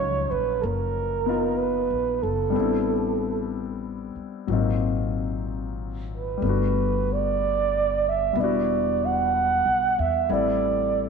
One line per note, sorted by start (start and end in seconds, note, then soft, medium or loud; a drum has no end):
0.00 0.29 C#2 soft
0.00 2.55 F3 soft
0.00 2.54 F#3 soft
0.00 2.55 C#4 soft
0.00 1.26 D#4 soft
0.00 1.28 F4 soft
0.00 0.32 C#5 medium
0.31 0.61 A#1 medium
0.31 0.62 B4 medium
0.61 1.87 F#1 medium
0.61 0.65 A4 soft
0.61 1.59 A#4 medium
1.26 2.51 B3 soft
1.26 2.55 D#4 soft
1.26 2.56 F4 soft
1.57 2.24 B4 medium
1.90 2.20 A#1 soft
2.23 2.53 F#1 medium
2.23 3.51 A4 medium
2.50 4.45 G3 soft
2.50 4.46 B3 soft
2.55 4.12 A1 medium
2.55 4.47 C4 soft
2.55 4.49 D4 soft
2.60 4.50 E4 soft
4.16 muted upright bass stroke soft
4.47 6.38 G#1 medium
4.47 6.43 A#2 soft
4.47 6.42 F#3 soft
4.47 6.43 C4 soft
4.52 6.44 D#4 soft
4.52 6.45 F4 soft
6.17 7.15 B4 medium
6.37 8.31 G3 soft
6.37 8.35 A3 soft
6.42 8.32 G1 medium
6.42 8.35 B3 soft
6.42 8.38 D4 soft
6.49 8.39 F#4 soft
7.13 8.11 D5 medium
8.09 8.42 E5 medium
8.33 9.60 E1 medium
8.33 10.28 G3 soft
8.33 10.29 B3 soft
8.39 10.31 D4 soft
8.39 10.28 E4 soft
8.39 9.07 D5 medium
8.44 10.33 F#4 soft
9.06 10.02 F#5 medium
9.66 9.95 B1 soft
9.99 10.28 E2 medium
9.99 10.34 E5 medium
10.29 11.09 A1 medium
10.29 11.09 G3 soft
10.29 11.09 A3 soft
10.29 11.09 C4 soft
10.29 11.09 E4 soft
10.29 11.09 A4 soft
10.29 11.09 D5 medium